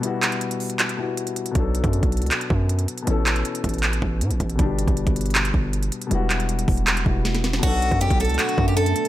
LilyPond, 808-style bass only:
\new Staff \with { instrumentName = "808-style bass" } { \clef bass \time 4/4 \key b \minor \tempo 4 = 158 r1 | b,,8. fis,8 b,,8 cis,16 r8 fis,4 r8 | a,,4 r8 a,,4 a,,8 a,16 a,,16 a,,8 | g,,8. g,,8 g,,4~ g,,16 g,,4 r8 |
e,,4. e,,4 e,,4. | b,,8. fis,8 b,,8 cis,16 r8 fis,4 r8 | }